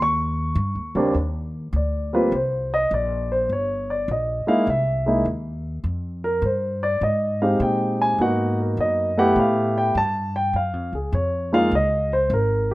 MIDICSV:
0, 0, Header, 1, 4, 480
1, 0, Start_track
1, 0, Tempo, 587084
1, 937, Time_signature, 4, 2, 24, 8
1, 10416, End_track
2, 0, Start_track
2, 0, Title_t, "Grand piano"
2, 0, Program_c, 0, 0
2, 18, Note_on_c, 0, 85, 97
2, 777, Note_on_c, 0, 39, 71
2, 781, Note_on_c, 0, 55, 66
2, 783, Note_on_c, 0, 58, 66
2, 789, Note_on_c, 0, 60, 61
2, 790, Note_on_c, 0, 62, 79
2, 844, Note_off_c, 0, 85, 0
2, 921, Note_off_c, 0, 39, 0
2, 923, Note_off_c, 0, 55, 0
2, 924, Note_off_c, 0, 58, 0
2, 927, Note_off_c, 0, 60, 0
2, 927, Note_off_c, 0, 62, 0
2, 1441, Note_on_c, 0, 74, 60
2, 1739, Note_off_c, 0, 74, 0
2, 1741, Note_on_c, 0, 55, 63
2, 1744, Note_on_c, 0, 58, 60
2, 1747, Note_on_c, 0, 60, 59
2, 1754, Note_on_c, 0, 71, 78
2, 1755, Note_on_c, 0, 65, 71
2, 1882, Note_off_c, 0, 55, 0
2, 1883, Note_off_c, 0, 58, 0
2, 1885, Note_off_c, 0, 60, 0
2, 1889, Note_off_c, 0, 65, 0
2, 1900, Note_off_c, 0, 71, 0
2, 1923, Note_on_c, 0, 72, 69
2, 2220, Note_off_c, 0, 72, 0
2, 2238, Note_on_c, 0, 75, 90
2, 2382, Note_off_c, 0, 75, 0
2, 2402, Note_on_c, 0, 74, 72
2, 2699, Note_off_c, 0, 74, 0
2, 2712, Note_on_c, 0, 72, 74
2, 2859, Note_off_c, 0, 72, 0
2, 2883, Note_on_c, 0, 73, 71
2, 3179, Note_off_c, 0, 73, 0
2, 3191, Note_on_c, 0, 74, 76
2, 3338, Note_off_c, 0, 74, 0
2, 3364, Note_on_c, 0, 75, 63
2, 3654, Note_on_c, 0, 56, 67
2, 3657, Note_on_c, 0, 58, 64
2, 3660, Note_off_c, 0, 75, 0
2, 3663, Note_on_c, 0, 63, 63
2, 3666, Note_on_c, 0, 77, 89
2, 3670, Note_on_c, 0, 64, 78
2, 3798, Note_off_c, 0, 56, 0
2, 3799, Note_off_c, 0, 58, 0
2, 3803, Note_off_c, 0, 63, 0
2, 3806, Note_off_c, 0, 64, 0
2, 3815, Note_off_c, 0, 77, 0
2, 3840, Note_on_c, 0, 76, 75
2, 4138, Note_on_c, 0, 56, 61
2, 4140, Note_on_c, 0, 58, 58
2, 4149, Note_on_c, 0, 63, 54
2, 4151, Note_on_c, 0, 64, 68
2, 4275, Note_off_c, 0, 76, 0
2, 4280, Note_off_c, 0, 56, 0
2, 4281, Note_off_c, 0, 58, 0
2, 4285, Note_off_c, 0, 63, 0
2, 4286, Note_off_c, 0, 64, 0
2, 5103, Note_on_c, 0, 70, 80
2, 5254, Note_off_c, 0, 70, 0
2, 5277, Note_on_c, 0, 72, 66
2, 5577, Note_off_c, 0, 72, 0
2, 5584, Note_on_c, 0, 74, 85
2, 5735, Note_off_c, 0, 74, 0
2, 5749, Note_on_c, 0, 75, 78
2, 6054, Note_off_c, 0, 75, 0
2, 6063, Note_on_c, 0, 56, 59
2, 6066, Note_on_c, 0, 77, 78
2, 6067, Note_on_c, 0, 60, 54
2, 6071, Note_on_c, 0, 63, 54
2, 6072, Note_on_c, 0, 67, 66
2, 6216, Note_off_c, 0, 77, 0
2, 6228, Note_on_c, 0, 79, 80
2, 6533, Note_off_c, 0, 79, 0
2, 6553, Note_on_c, 0, 80, 91
2, 6668, Note_off_c, 0, 56, 0
2, 6670, Note_off_c, 0, 60, 0
2, 6672, Note_off_c, 0, 63, 0
2, 6672, Note_off_c, 0, 67, 0
2, 6700, Note_off_c, 0, 80, 0
2, 6701, Note_on_c, 0, 58, 61
2, 6703, Note_on_c, 0, 59, 54
2, 6710, Note_on_c, 0, 63, 55
2, 6713, Note_on_c, 0, 66, 67
2, 6717, Note_on_c, 0, 78, 84
2, 7018, Note_off_c, 0, 78, 0
2, 7035, Note_on_c, 0, 70, 53
2, 7181, Note_off_c, 0, 70, 0
2, 7199, Note_on_c, 0, 75, 78
2, 7436, Note_off_c, 0, 58, 0
2, 7437, Note_off_c, 0, 59, 0
2, 7441, Note_off_c, 0, 63, 0
2, 7442, Note_off_c, 0, 66, 0
2, 7499, Note_off_c, 0, 75, 0
2, 7501, Note_on_c, 0, 57, 75
2, 7505, Note_on_c, 0, 59, 70
2, 7508, Note_on_c, 0, 64, 65
2, 7513, Note_on_c, 0, 78, 91
2, 7516, Note_on_c, 0, 67, 83
2, 7660, Note_off_c, 0, 78, 0
2, 7682, Note_on_c, 0, 77, 75
2, 7981, Note_off_c, 0, 77, 0
2, 7993, Note_on_c, 0, 79, 87
2, 8108, Note_off_c, 0, 57, 0
2, 8110, Note_off_c, 0, 59, 0
2, 8112, Note_off_c, 0, 64, 0
2, 8115, Note_off_c, 0, 67, 0
2, 8141, Note_off_c, 0, 79, 0
2, 8155, Note_on_c, 0, 81, 97
2, 8458, Note_off_c, 0, 81, 0
2, 8469, Note_on_c, 0, 79, 87
2, 8619, Note_off_c, 0, 79, 0
2, 8635, Note_on_c, 0, 77, 72
2, 8938, Note_off_c, 0, 77, 0
2, 8952, Note_on_c, 0, 68, 53
2, 9101, Note_off_c, 0, 68, 0
2, 9112, Note_on_c, 0, 73, 74
2, 9417, Note_off_c, 0, 73, 0
2, 9423, Note_on_c, 0, 56, 69
2, 9424, Note_on_c, 0, 58, 64
2, 9429, Note_on_c, 0, 63, 60
2, 9435, Note_on_c, 0, 65, 81
2, 9435, Note_on_c, 0, 77, 99
2, 9566, Note_off_c, 0, 56, 0
2, 9566, Note_off_c, 0, 58, 0
2, 9569, Note_off_c, 0, 63, 0
2, 9572, Note_off_c, 0, 65, 0
2, 9583, Note_off_c, 0, 77, 0
2, 9609, Note_on_c, 0, 75, 83
2, 9906, Note_off_c, 0, 75, 0
2, 9919, Note_on_c, 0, 72, 84
2, 10065, Note_off_c, 0, 72, 0
2, 10085, Note_on_c, 0, 70, 76
2, 10385, Note_off_c, 0, 70, 0
2, 10416, End_track
3, 0, Start_track
3, 0, Title_t, "Upright bass"
3, 0, Program_c, 1, 32
3, 0, Note_on_c, 1, 39, 82
3, 441, Note_off_c, 1, 39, 0
3, 453, Note_on_c, 1, 43, 93
3, 615, Note_on_c, 1, 39, 55
3, 628, Note_off_c, 1, 43, 0
3, 771, Note_off_c, 1, 39, 0
3, 776, Note_on_c, 1, 37, 67
3, 925, Note_off_c, 1, 37, 0
3, 936, Note_on_c, 1, 39, 74
3, 1401, Note_off_c, 1, 39, 0
3, 1412, Note_on_c, 1, 38, 87
3, 1879, Note_off_c, 1, 38, 0
3, 1896, Note_on_c, 1, 36, 80
3, 2361, Note_off_c, 1, 36, 0
3, 2379, Note_on_c, 1, 34, 85
3, 2842, Note_off_c, 1, 34, 0
3, 2857, Note_on_c, 1, 31, 76
3, 3321, Note_off_c, 1, 31, 0
3, 3336, Note_on_c, 1, 34, 82
3, 3633, Note_off_c, 1, 34, 0
3, 3817, Note_on_c, 1, 36, 80
3, 4281, Note_off_c, 1, 36, 0
3, 4296, Note_on_c, 1, 39, 82
3, 4761, Note_off_c, 1, 39, 0
3, 4772, Note_on_c, 1, 41, 76
3, 5239, Note_off_c, 1, 41, 0
3, 5248, Note_on_c, 1, 43, 90
3, 5717, Note_off_c, 1, 43, 0
3, 5733, Note_on_c, 1, 44, 84
3, 6200, Note_off_c, 1, 44, 0
3, 6212, Note_on_c, 1, 46, 86
3, 6680, Note_off_c, 1, 46, 0
3, 6691, Note_on_c, 1, 44, 76
3, 7160, Note_off_c, 1, 44, 0
3, 7171, Note_on_c, 1, 42, 81
3, 7640, Note_off_c, 1, 42, 0
3, 7650, Note_on_c, 1, 45, 82
3, 8120, Note_off_c, 1, 45, 0
3, 8135, Note_on_c, 1, 43, 86
3, 8603, Note_off_c, 1, 43, 0
3, 8612, Note_on_c, 1, 42, 73
3, 8775, Note_off_c, 1, 42, 0
3, 8775, Note_on_c, 1, 41, 51
3, 8928, Note_off_c, 1, 41, 0
3, 8933, Note_on_c, 1, 37, 60
3, 9085, Note_off_c, 1, 37, 0
3, 9096, Note_on_c, 1, 41, 85
3, 9564, Note_off_c, 1, 41, 0
3, 9577, Note_on_c, 1, 37, 81
3, 10045, Note_off_c, 1, 37, 0
3, 10055, Note_on_c, 1, 32, 88
3, 10416, Note_off_c, 1, 32, 0
3, 10416, End_track
4, 0, Start_track
4, 0, Title_t, "Muted upright bass strokes"
4, 3654, Note_on_c, 9, 29, 38
4, 3735, Note_off_c, 9, 29, 0
4, 10416, End_track
0, 0, End_of_file